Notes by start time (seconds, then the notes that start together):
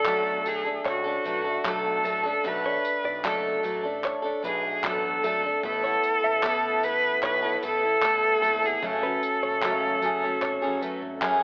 Already playing: B1 A4 D5
0.06 B2 F#3 A3 D4 A4, kick, clap
0.45 F#3 A3 D4 G#4 A4, tambourine
0.65 A3 D4 A4
0.85 C#2 F#4 C#5, kick, clap
1.04 A3 D4 A4
1.24 B1 F#3 A3 D4 A4 B4, tambourine
1.44 A3 D4 A4
1.64 B1 B2 F#3 A3 D4 A4, kick, clap
1.68 A4
2.03 A1 F#3 A3 D4 A4, tambourine
2.23 A3 D4 A4
2.44 B1 B2 F#3 A3 D4 A4 B4, kick
2.64 A3 D4 A4 C#5
2.85 tambourine
3.04 B1 D5
3.23 F#1 B2 F#3 A3 D4 A4, kick, clap
3.63 A1 F#3 A3 D4 A4, tambourine
3.83 A3 D4 A4
4.04 C#5, kick, clap
4.22 A3 D4 A4
4.43 B1 F#3 A3 D4 G#4 B4, tambourine
4.83 A1 B2 F#3 A3 D4 A4, kick, clap
5.23 G#1 F#3 A3 D4 A4, tambourine
5.43 A3 D4 A4
5.63 A1 A3 B3 E4 A4, kick
5.83 B3 E4 A4 C#5
6.03 tambourine
6.24 A1 E5
6.43 A3 B3 E4 A4, kick, clap
6.83 A3 B3 E4 A4 B4, tambourine
7.23 B1 B4 C#5, kick, clap
7.43 B3 E4 A4
7.63 A1 A3 B3 E4 A4 B4, tambourine
7.83 B3 E4 A4
8.02 A1 A3 B3 E4 A4, kick, clap
8.42 G#1 A3 B3 E4 A4, tambourine
8.62 B3 E4 G#4 A4
8.82 F#1 F#2 C#3 F#3 A3 C#4 G#4 A4, kick
9.03 F#3 A3 C#4 B4
9.23 tambourine
9.43 F#1 C#5
9.62 C#2 F#2 C#3 F#3 A3 C#4, kick, clap
10.02 F#1 F#3 A3 C#4 G#4, tambourine
10.23 F#3 A3 C#4
10.42 G#1 C#5, kick, clap
10.62 F#1 F#3 A3 C#4 G#4
10.81 F#3 A3 C#4 B4, tambourine
11.02 G#1
11.21 F#2 C#3 F#3 A3 C#4 G#4, kick, clap